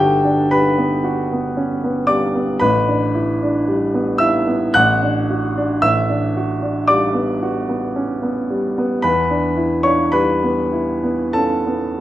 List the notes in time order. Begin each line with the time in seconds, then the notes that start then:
Already playing: G1 D4 F#4 G4 A4 G5 A5
0.25 D4
0.51 G3 B4 B5
0.78 B3
1.04 F#4
1.33 B3
1.57 C#4
1.84 B3
2.07 G3 D5 D6
2.35 B3
2.60 A1 B4 B5
2.88 D4
3.15 E4
3.43 D4
3.68 G3
3.94 B3
4.18 E4 E5 E6
4.47 B3
4.74 A1 F#5 F#6
5.03 D4
5.30 F#4
5.58 D4
5.82 A1 E5 E6
6.10 D4
6.37 F#4
6.63 D4
6.88 G3 D5 D6
7.14 B3
7.43 F#4
7.69 B3
7.96 C#4
8.23 B3
8.50 G3
8.78 B3
9.02 E2 B4 B5
9.31 D4
9.57 E4
9.83 D4 C#5 C#6
10.12 G3 B4 B5
10.44 B3
10.73 E4
11.03 B3
11.33 C#4 A4 A5
11.67 B3